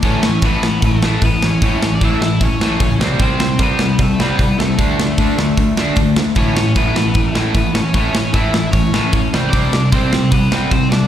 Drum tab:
HH |o-o-o-o-|o-o-o-o-|o-o-o-o-|o-o-o-o-|
SD |-o-o-o-o|-o-o-o-o|-o-o-o-o|-o-o-o-o|
BD |o-o-o-o-|o-o-o-o-|o-o-o-o-|o-o-o-o-|

HH |o-o-o-o-|o-o-o-o-|o-o-o-o-|
SD |-o-o-o-o|-o-o-o-o|-o-o-o-o|
BD |o-o-o-o-|o-o-o-o-|o-o-o-o-|